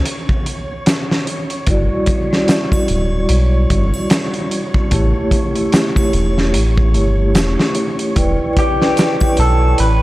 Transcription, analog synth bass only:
0, 0, Header, 1, 2, 480
1, 0, Start_track
1, 0, Tempo, 810811
1, 995, Time_signature, 4, 2, 24, 8
1, 5934, End_track
2, 0, Start_track
2, 0, Title_t, "Analog synth bass"
2, 0, Program_c, 0, 38
2, 989, Note_on_c, 0, 31, 96
2, 1114, Note_off_c, 0, 31, 0
2, 1712, Note_on_c, 0, 26, 86
2, 1929, Note_off_c, 0, 26, 0
2, 1949, Note_on_c, 0, 35, 96
2, 2168, Note_off_c, 0, 35, 0
2, 2193, Note_on_c, 0, 31, 107
2, 2316, Note_off_c, 0, 31, 0
2, 2912, Note_on_c, 0, 33, 98
2, 3036, Note_off_c, 0, 33, 0
2, 3630, Note_on_c, 0, 28, 92
2, 3873, Note_on_c, 0, 33, 86
2, 3882, Note_off_c, 0, 28, 0
2, 4112, Note_on_c, 0, 31, 88
2, 4121, Note_off_c, 0, 33, 0
2, 4355, Note_on_c, 0, 28, 93
2, 4364, Note_off_c, 0, 31, 0
2, 4478, Note_off_c, 0, 28, 0
2, 4834, Note_on_c, 0, 28, 93
2, 4957, Note_off_c, 0, 28, 0
2, 5555, Note_on_c, 0, 35, 91
2, 5770, Note_off_c, 0, 35, 0
2, 5797, Note_on_c, 0, 33, 93
2, 5934, Note_off_c, 0, 33, 0
2, 5934, End_track
0, 0, End_of_file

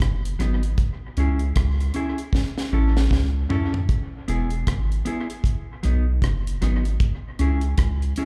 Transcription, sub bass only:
0, 0, Header, 1, 2, 480
1, 0, Start_track
1, 0, Key_signature, 4, "major"
1, 0, Tempo, 777202
1, 482, Time_signature, 4, 2, 24, 8
1, 5096, End_track
2, 0, Start_track
2, 0, Title_t, "Sub bass"
2, 0, Program_c, 0, 38
2, 2, Note_on_c, 0, 30, 87
2, 222, Note_off_c, 0, 30, 0
2, 243, Note_on_c, 0, 32, 89
2, 463, Note_off_c, 0, 32, 0
2, 723, Note_on_c, 0, 37, 98
2, 942, Note_off_c, 0, 37, 0
2, 965, Note_on_c, 0, 37, 98
2, 1184, Note_off_c, 0, 37, 0
2, 1681, Note_on_c, 0, 33, 96
2, 1902, Note_off_c, 0, 33, 0
2, 1922, Note_on_c, 0, 37, 82
2, 2142, Note_off_c, 0, 37, 0
2, 2647, Note_on_c, 0, 28, 95
2, 2865, Note_off_c, 0, 28, 0
2, 2887, Note_on_c, 0, 32, 86
2, 3105, Note_off_c, 0, 32, 0
2, 3611, Note_on_c, 0, 35, 99
2, 3827, Note_off_c, 0, 35, 0
2, 3843, Note_on_c, 0, 30, 85
2, 4063, Note_off_c, 0, 30, 0
2, 4088, Note_on_c, 0, 32, 96
2, 4306, Note_off_c, 0, 32, 0
2, 4566, Note_on_c, 0, 37, 94
2, 4785, Note_off_c, 0, 37, 0
2, 4806, Note_on_c, 0, 37, 91
2, 5025, Note_off_c, 0, 37, 0
2, 5096, End_track
0, 0, End_of_file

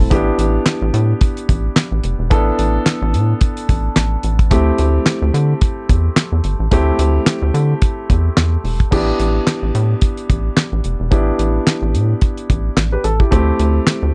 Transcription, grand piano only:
0, 0, Header, 1, 2, 480
1, 0, Start_track
1, 0, Key_signature, 0, "minor"
1, 0, Tempo, 550459
1, 96, Time_signature, 4, 2, 24, 8
1, 12332, End_track
2, 0, Start_track
2, 0, Title_t, "Grand piano"
2, 0, Program_c, 0, 0
2, 0, Note_on_c, 0, 57, 62
2, 0, Note_on_c, 0, 60, 53
2, 0, Note_on_c, 0, 64, 57
2, 0, Note_on_c, 0, 69, 62
2, 87, Note_off_c, 0, 64, 0
2, 90, Note_on_c, 0, 59, 74
2, 95, Note_off_c, 0, 57, 0
2, 96, Note_off_c, 0, 60, 0
2, 96, Note_on_c, 0, 62, 70
2, 99, Note_off_c, 0, 69, 0
2, 101, Note_on_c, 0, 64, 66
2, 105, Note_on_c, 0, 67, 85
2, 1978, Note_off_c, 0, 59, 0
2, 1981, Note_off_c, 0, 62, 0
2, 1983, Note_off_c, 0, 64, 0
2, 1986, Note_off_c, 0, 67, 0
2, 2008, Note_on_c, 0, 59, 77
2, 2014, Note_on_c, 0, 62, 76
2, 2018, Note_on_c, 0, 64, 65
2, 2022, Note_on_c, 0, 69, 93
2, 3897, Note_off_c, 0, 59, 0
2, 3900, Note_off_c, 0, 62, 0
2, 3902, Note_off_c, 0, 64, 0
2, 3904, Note_off_c, 0, 69, 0
2, 3928, Note_on_c, 0, 57, 74
2, 3933, Note_on_c, 0, 60, 73
2, 3939, Note_on_c, 0, 64, 68
2, 3942, Note_on_c, 0, 67, 86
2, 5817, Note_off_c, 0, 57, 0
2, 5820, Note_off_c, 0, 60, 0
2, 5823, Note_off_c, 0, 64, 0
2, 5824, Note_off_c, 0, 67, 0
2, 5853, Note_on_c, 0, 57, 81
2, 5858, Note_on_c, 0, 60, 66
2, 5862, Note_on_c, 0, 64, 73
2, 5867, Note_on_c, 0, 67, 96
2, 7739, Note_off_c, 0, 57, 0
2, 7742, Note_off_c, 0, 60, 0
2, 7744, Note_off_c, 0, 64, 0
2, 7747, Note_off_c, 0, 67, 0
2, 7770, Note_on_c, 0, 59, 66
2, 7776, Note_on_c, 0, 62, 69
2, 7780, Note_on_c, 0, 64, 68
2, 7785, Note_on_c, 0, 67, 78
2, 9658, Note_off_c, 0, 59, 0
2, 9661, Note_off_c, 0, 62, 0
2, 9663, Note_off_c, 0, 64, 0
2, 9666, Note_off_c, 0, 67, 0
2, 9687, Note_on_c, 0, 59, 68
2, 9690, Note_on_c, 0, 62, 71
2, 9695, Note_on_c, 0, 64, 74
2, 9700, Note_on_c, 0, 67, 74
2, 11107, Note_off_c, 0, 64, 0
2, 11109, Note_off_c, 0, 67, 0
2, 11269, Note_on_c, 0, 71, 60
2, 11275, Note_on_c, 0, 67, 55
2, 11338, Note_off_c, 0, 59, 0
2, 11339, Note_off_c, 0, 62, 0
2, 11370, Note_off_c, 0, 71, 0
2, 11372, Note_on_c, 0, 69, 72
2, 11373, Note_off_c, 0, 67, 0
2, 11502, Note_off_c, 0, 69, 0
2, 11508, Note_on_c, 0, 67, 62
2, 11512, Note_on_c, 0, 64, 52
2, 11601, Note_off_c, 0, 64, 0
2, 11604, Note_on_c, 0, 57, 78
2, 11605, Note_off_c, 0, 67, 0
2, 11608, Note_on_c, 0, 60, 68
2, 11615, Note_on_c, 0, 64, 67
2, 11618, Note_on_c, 0, 67, 86
2, 12332, Note_off_c, 0, 57, 0
2, 12332, Note_off_c, 0, 60, 0
2, 12332, Note_off_c, 0, 64, 0
2, 12332, Note_off_c, 0, 67, 0
2, 12332, End_track
0, 0, End_of_file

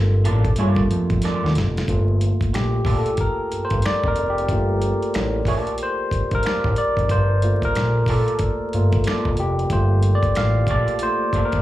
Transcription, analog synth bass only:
0, 0, Header, 1, 2, 480
1, 0, Start_track
1, 0, Key_signature, -2, "minor"
1, 0, Tempo, 652174
1, 1383, Time_signature, 4, 2, 24, 8
1, 8552, End_track
2, 0, Start_track
2, 0, Title_t, "Analog synth bass"
2, 0, Program_c, 0, 38
2, 0, Note_on_c, 0, 31, 98
2, 187, Note_on_c, 0, 33, 104
2, 198, Note_off_c, 0, 31, 0
2, 386, Note_off_c, 0, 33, 0
2, 432, Note_on_c, 0, 43, 103
2, 628, Note_off_c, 0, 43, 0
2, 671, Note_on_c, 0, 41, 92
2, 991, Note_off_c, 0, 41, 0
2, 1061, Note_on_c, 0, 39, 84
2, 1152, Note_on_c, 0, 29, 101
2, 1163, Note_off_c, 0, 39, 0
2, 1348, Note_off_c, 0, 29, 0
2, 1388, Note_on_c, 0, 31, 103
2, 1709, Note_off_c, 0, 31, 0
2, 1872, Note_on_c, 0, 34, 85
2, 2068, Note_off_c, 0, 34, 0
2, 2101, Note_on_c, 0, 34, 86
2, 2225, Note_off_c, 0, 34, 0
2, 2594, Note_on_c, 0, 31, 44
2, 2650, Note_off_c, 0, 31, 0
2, 2735, Note_on_c, 0, 31, 84
2, 2810, Note_off_c, 0, 31, 0
2, 2975, Note_on_c, 0, 29, 92
2, 3050, Note_off_c, 0, 29, 0
2, 3076, Note_on_c, 0, 29, 89
2, 3306, Note_on_c, 0, 31, 92
2, 3317, Note_off_c, 0, 29, 0
2, 3628, Note_off_c, 0, 31, 0
2, 3790, Note_on_c, 0, 33, 90
2, 3987, Note_off_c, 0, 33, 0
2, 4018, Note_on_c, 0, 34, 96
2, 4143, Note_off_c, 0, 34, 0
2, 4505, Note_on_c, 0, 31, 47
2, 4564, Note_off_c, 0, 31, 0
2, 4655, Note_on_c, 0, 31, 86
2, 4730, Note_off_c, 0, 31, 0
2, 4751, Note_on_c, 0, 33, 48
2, 4808, Note_off_c, 0, 33, 0
2, 4893, Note_on_c, 0, 33, 92
2, 4969, Note_off_c, 0, 33, 0
2, 5135, Note_on_c, 0, 29, 83
2, 5210, Note_off_c, 0, 29, 0
2, 5225, Note_on_c, 0, 31, 95
2, 5547, Note_off_c, 0, 31, 0
2, 5714, Note_on_c, 0, 34, 91
2, 5910, Note_off_c, 0, 34, 0
2, 5940, Note_on_c, 0, 34, 89
2, 6064, Note_off_c, 0, 34, 0
2, 6432, Note_on_c, 0, 31, 84
2, 6628, Note_off_c, 0, 31, 0
2, 6816, Note_on_c, 0, 29, 89
2, 6891, Note_off_c, 0, 29, 0
2, 6912, Note_on_c, 0, 29, 85
2, 7108, Note_off_c, 0, 29, 0
2, 7144, Note_on_c, 0, 31, 98
2, 7466, Note_off_c, 0, 31, 0
2, 7637, Note_on_c, 0, 33, 87
2, 7831, Note_off_c, 0, 33, 0
2, 7856, Note_on_c, 0, 34, 100
2, 7982, Note_off_c, 0, 34, 0
2, 8342, Note_on_c, 0, 31, 45
2, 8401, Note_off_c, 0, 31, 0
2, 8490, Note_on_c, 0, 31, 91
2, 8552, Note_off_c, 0, 31, 0
2, 8552, End_track
0, 0, End_of_file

